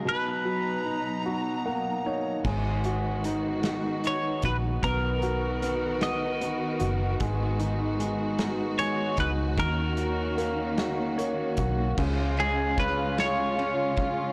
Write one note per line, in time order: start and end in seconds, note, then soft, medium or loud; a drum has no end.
0.05 2.41 B2 medium
0.05 2.43 B2 medium
0.05 2.43 F#3 medium
0.05 2.43 D#4 medium
0.05 1.63 B4 medium
0.05 2.43 A#5 medium
0.45 2.01 F#3 soft
0.86 2.04 D#4 soft
1.26 2.42 F#4 soft
1.66 2.43 A#3 soft
1.66 2.03 F#5 medium
2.06 2.44 D#4 soft
2.06 2.43 C#5 medium
2.44 4.40 G#1 medium
2.44 4.81 D#3 medium
2.44 4.81 G#3 medium
2.44 4.80 G#3 medium
2.44 9.53 B3 medium
2.44 4.81 F#4 medium
2.44 kick medium
2.44 crash medium
2.84 3.64 F#4 soft
2.84 closed hi-hat soft
3.24 4.03 D#4 soft
3.24 closed hi-hat medium
3.63 4.43 F#4 soft
3.63 snare medium
3.63 closed hi-hat medium
4.04 4.81 D#4 soft
4.04 4.45 C#5 medium
4.04 closed hi-hat soft
4.42 4.81 A#1 medium
4.42 4.83 F#4 soft
4.42 4.56 B4 medium
4.42 kick medium
4.42 closed hi-hat medium
4.83 6.77 B1 medium
4.83 9.53 D#3 medium
4.83 5.61 B3 medium
4.83 7.19 F#4 medium
4.83 7.19 A#4 medium
4.83 6.02 A#4 medium
4.83 kick medium
4.83 closed hi-hat medium
5.22 6.00 F#4 medium
5.22 closed hi-hat soft
5.62 6.40 B3 medium
5.62 closed hi-hat medium
6.01 6.79 F#4 soft
6.01 6.88 D#5 medium
6.01 snare medium
6.01 closed hi-hat medium
6.41 7.18 B3 soft
6.41 closed hi-hat soft
6.80 7.18 F#1 medium
6.80 7.19 F#4 medium
6.80 closed hi-hat medium
7.20 9.14 G#1 loud
7.20 9.55 G#3 medium
7.20 7.98 G#3 medium
7.20 11.93 F#4 medium
7.20 kick medium
7.20 closed hi-hat medium
7.60 8.38 D#4 medium
7.60 closed hi-hat soft
8.00 8.78 G#3 medium
8.00 closed hi-hat medium
8.39 9.17 D#4 medium
8.39 snare loud
8.39 closed hi-hat medium
8.79 9.56 G#3 medium
8.79 9.19 C#5 loud
8.79 closed hi-hat soft
9.17 9.55 C#2 medium
9.17 9.56 D#4 medium
9.17 9.30 B4 loud
9.17 kick medium
9.17 closed hi-hat medium
9.57 11.53 D#2 loud
9.57 11.94 D#3 medium
9.57 11.95 D#3 medium
9.57 11.95 A#3 medium
9.57 11.95 C#4 medium
9.57 11.14 A#4 medium
9.57 kick medium
9.57 closed hi-hat medium
9.97 10.77 F#4 medium
9.97 closed hi-hat medium
10.38 11.17 A#3 medium
10.38 closed hi-hat medium
10.78 11.57 F#4 medium
10.78 snare loud
10.78 closed hi-hat medium
11.18 11.95 A#3 medium
11.18 11.94 C#5 medium
11.18 closed hi-hat medium
11.57 11.95 B1 medium
11.57 11.97 F#4 medium
11.57 kick medium
11.57 closed hi-hat medium
11.98 13.97 C#2 medium
11.98 14.32 C#3 medium
11.98 14.32 G#3 medium
11.98 14.32 C#4 medium
11.98 14.32 F4 medium
11.98 kick medium
11.98 crash medium
12.37 13.94 G#3 medium
12.37 12.80 G#4 medium
12.37 ride soft
12.78 13.56 C#4 medium
12.78 13.19 B4 medium
12.78 kick medium
12.78 ride soft
13.18 13.96 F4 medium
13.18 14.32 C#5 medium
13.18 snare loud
13.18 ride medium
13.58 14.32 C#4 medium
13.58 ride soft
13.97 14.32 F4 medium
13.97 kick medium
13.97 ride soft